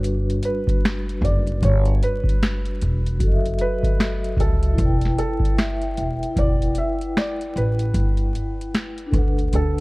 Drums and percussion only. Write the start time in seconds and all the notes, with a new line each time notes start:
0.04 closed hi-hat
0.30 closed hi-hat
0.43 closed hi-hat
0.67 kick, closed hi-hat
0.85 finger snap, snare, closed hi-hat
1.09 closed hi-hat
1.21 kick, closed hi-hat
1.47 closed hi-hat
1.62 kick, closed hi-hat
1.85 closed hi-hat
2.03 closed hi-hat
2.24 kick
2.29 closed hi-hat
2.43 finger snap, snare, closed hi-hat
2.65 closed hi-hat
2.81 closed hi-hat
3.06 closed hi-hat
3.20 kick, closed hi-hat
3.46 closed hi-hat
3.59 closed hi-hat
3.83 kick, closed hi-hat
4.00 finger snap, snare, closed hi-hat
4.24 closed hi-hat
4.37 kick, closed hi-hat
4.63 closed hi-hat
4.78 kick, closed hi-hat
5.01 snare, closed hi-hat
5.18 closed hi-hat
5.40 kick
5.45 closed hi-hat
5.59 finger snap, snare, closed hi-hat
5.82 closed hi-hat
5.97 closed hi-hat
6.23 closed hi-hat
6.36 kick, closed hi-hat
6.62 closed hi-hat
6.75 closed hi-hat
7.01 closed hi-hat
7.17 finger snap, snare, closed hi-hat
7.41 closed hi-hat
7.57 closed hi-hat
7.79 closed hi-hat
7.94 kick, closed hi-hat
8.17 closed hi-hat
8.35 closed hi-hat
8.61 closed hi-hat
8.74 finger snap, snare, closed hi-hat
8.98 closed hi-hat
9.12 kick, closed hi-hat
9.39 closed hi-hat
9.53 closed hi-hat